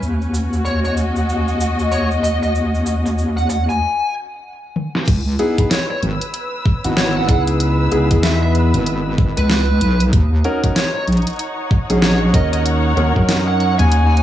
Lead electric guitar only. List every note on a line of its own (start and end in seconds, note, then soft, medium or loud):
0.65 0.78 C#5 medium
0.85 0.93 C#5 medium
1.92 2.07 C#5 medium
2.23 2.36 D#5 medium
2.43 2.51 D#5 medium
3.37 3.45 F#5 medium
3.50 3.62 F#5 medium
3.69 4.13 G#5 medium
5.71 5.83 C#5 medium
5.90 5.98 C#5 medium
6.97 7.12 C#5 medium
7.16 7.24 F#5 medium
7.29 7.41 F#5 medium
8.23 8.36 E5 medium
8.42 8.50 E5 medium
9.37 10.01 B4 medium
10.76 10.88 C#5 medium
10.95 11.03 C#5 medium
12.02 12.18 C#5 loud
12.34 12.46 D#5 medium
12.53 12.61 D#5 medium
13.48 13.56 F#5 medium
13.60 13.73 F#5 medium
13.79 14.23 G#5 medium